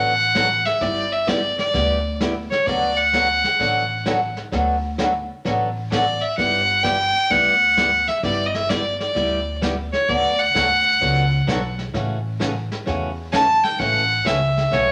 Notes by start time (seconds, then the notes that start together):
Already playing: A1 D3 F#3 B3 F#4 A4 F#5
0.35 D3 F#3 B3 F#4 A4, kick, snare, hi-hat pedal
0.65 E5, snare
0.81 G1 G3 B3 E4 G4 D5, brush sweep, kick, snare
1.12 E5
1.27 G3 B3 E4 G4 D5, kick, snare, hi-hat pedal
1.59 D5, snare
1.73 D2 G3 B3 E4 G4, brush sweep, kick, snare
2.21 G3 B3 E4 G4, kick, snare, hi-hat pedal
2.50 C#5, snare
2.66 D2 D3 F#3 B3 F#4 A4 D5, brush sweep, kick, snare
2.97 F#5
3.13 D3 F#3 B3 F#4 A4, kick, snare, hi-hat pedal
3.44 snare
3.59 A1 D3 F#3 B3 F#4 A4, brush sweep, kick, snare
4.05 D3 F#3 B3 F#4 A4, kick, snare, hi-hat pedal
4.37 snare
4.52 D2 D3 F#3 B3 F#4 A4, brush sweep, kick, snare
4.98 D3 F#3 B3 F#4 A4, kick, snare, hi-hat pedal
5.45 A1 D3 F#3 B3 F#4 A4, brush sweep, kick, snare
5.91 D3 F#3 B3 F#4 A4 D5, kick, snare, hi-hat pedal
6.21 E5
6.37 G1 G3 B3 E4 G4 F#5, brush sweep, kick, snare
6.83 G3 B3 E4 G4 G5, kick, snare, hi-hat pedal
7.30 D2 G3 B3 E4 G4 F#5, brush sweep, kick, snare
7.77 G3 B3 E4 G4, kick, snare, hi-hat pedal
8.08 E5, snare
8.23 G1 G3 B3 E4 G4 D5, brush sweep, kick, snare
8.46 D#5
8.54 E5, snare
8.69 G3 B3 E4 G4 D5, kick, snare, hi-hat pedal
9.00 D5, snare
9.15 D2 G3 B3 E4 G4, brush sweep, kick, snare
9.61 G3 B3 E4 G4, kick, snare, hi-hat pedal
9.93 C#5, snare
10.08 D2 D3 F#3 B3 F#4 A4 D5, brush sweep, kick, snare
10.39 F#5
10.54 D2 D3 F#3 B3 F#4 A4, kick, snare, hi-hat pedal
11.00 C#2 D3 F#3 B3 F#4 A4, brush sweep, kick, snare
11.47 B1 D3 F#3 B3 F#4 A4, kick, snare, hi-hat pedal
11.79 snare
11.94 A1 C#3 E3 A3 C#4 F#4, brush sweep, kick, snare
12.40 C#3 E3 A3 C#4 F#4, kick, snare, hi-hat pedal
12.72 snare
12.86 E2 C#3 E3 A3 C#4 F#4, brush sweep, kick, snare
13.32 C#3 E3 A3 C#4 F#4 A5, kick, snare, hi-hat pedal
13.64 G5, snare
13.79 A1 C#3 E3 A3 C#4 F#4 F#5, brush sweep, kick, snare
14.25 C#2 C#3 E3 A3 C#4 F#4 E5, kick, snare, hi-hat pedal
14.57 snare
14.71 B1 C#3 E3 A3 C#4 F#4 C#5, brush sweep, kick, snare